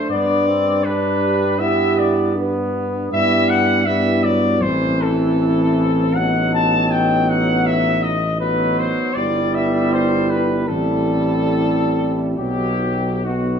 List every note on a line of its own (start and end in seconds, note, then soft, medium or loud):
0.00 0.12 A3 medium
0.00 0.84 D4 medium
0.09 3.09 G2 medium
0.09 0.49 B3 medium
0.09 0.83 B4 medium
0.09 0.83 D5 medium
0.47 0.86 C4 medium
0.84 1.61 D4 medium
0.84 1.58 G4 medium
0.84 1.60 B4 medium
1.59 2.36 B3 medium
1.59 2.38 E4 medium
1.59 2.35 G4 medium
1.59 1.98 E5 loud
1.99 2.37 D5 medium
2.36 3.11 B3 medium
2.36 3.12 D4 medium
2.36 3.13 B4 medium
3.12 4.64 G2 medium
3.12 3.83 G3 medium
3.12 3.83 B3 medium
3.12 3.83 E4 medium
3.12 3.47 E5 loud
3.49 3.86 F#5 loud
3.86 4.26 G3 medium
3.86 4.65 B3 medium
3.86 4.61 E4 medium
3.86 4.24 E5 medium
4.23 4.65 F#3 medium
4.23 4.62 D5 medium
4.62 8.99 A1 medium
4.62 6.17 E3 medium
4.62 6.18 C4 medium
4.62 6.12 E4 medium
4.62 5.01 C5 loud
5.01 6.15 A4 medium
6.15 8.22 F#3 medium
6.15 8.23 B3 medium
6.15 8.22 D#4 medium
6.15 6.53 F#5 loud
6.53 6.90 A5 medium
6.91 7.28 G5 medium
7.28 7.65 F#5 medium
7.66 8.03 E5 loud
8.02 8.39 D#5 medium
8.39 9.14 F#3 medium
8.39 9.14 B3 medium
8.39 9.14 D#4 medium
8.39 8.77 B4 medium
8.78 9.16 C5 medium
9.15 10.71 G1 medium
9.15 10.65 G3 medium
9.15 10.71 B3 medium
9.15 10.65 E4 medium
9.15 9.54 D5 loud
9.54 9.92 E5 medium
9.92 10.30 C5 medium
10.30 10.69 B4 medium
10.68 12.38 A1 medium
10.68 12.35 G3 medium
10.68 12.38 C4 medium
10.68 12.35 E4 medium
10.68 12.20 A4 medium
12.37 13.59 B1 medium
12.37 13.23 F#3 medium
12.37 13.24 B3 medium
12.37 13.23 D#4 medium
12.37 13.23 G4 medium
13.24 13.59 F#3 medium
13.24 13.59 B3 medium
13.24 13.59 D#4 medium
13.24 13.59 F#4 medium